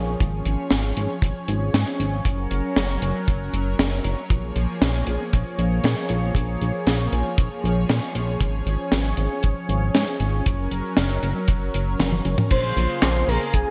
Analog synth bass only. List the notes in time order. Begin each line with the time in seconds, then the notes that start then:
Already playing: A#1
0.21 G#1
0.46 G#1
0.71 G#1
0.97 G#1
1.22 G#1
1.48 G#1
1.74 G#2
2.00 G#1
2.25 F#1
2.51 F#1
2.77 F#1
3.02 F#1
3.28 F#1
3.53 F#1
3.79 F#1
4.05 F#1
4.30 A#1
4.56 A#1
4.82 A#1
5.07 A#1
5.33 A#1
5.59 A#1
5.84 A#2
6.10 A#1
6.35 A#1
6.61 A#1
6.87 A#1
7.13 A#1
7.38 A#1
7.64 A#1
7.90 A#2
8.15 A#1
8.41 G#1
8.66 G#1
8.92 G#1
9.18 G#1
9.44 G#1
9.69 G#1
9.95 G#2
10.20 G#1
10.46 F#1
10.72 F#1
10.97 F#1
11.23 F#1
11.48 F#1
11.74 F#1
12.00 F#1
12.25 F#1
12.51 A#1
12.77 A#1
13.02 A#1
13.28 A#1
13.54 A#1